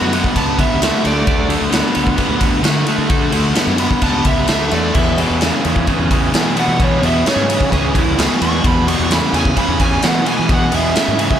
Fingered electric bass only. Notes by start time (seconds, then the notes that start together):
0.01 F#2
0.35 C#2
0.70 C#2
1.05 D2
1.27 D2
1.61 D2
1.96 D2
2.29 D2
2.63 D3
2.98 D3
3.32 D2
3.67 F#2
4.02 C#2
4.25 C#2
4.49 D2
4.72 E2
4.95 E2
5.30 E2
5.65 E2
5.99 E2
6.34 E3
6.68 E3
7.02 E2
7.36 G#2
7.73 C#2
8.07 C#2
8.41 E2
8.64 E2
9.00 E2
9.33 E2
9.68 E2
10.03 E3
10.39 E3
10.73 E2
11.08 G#2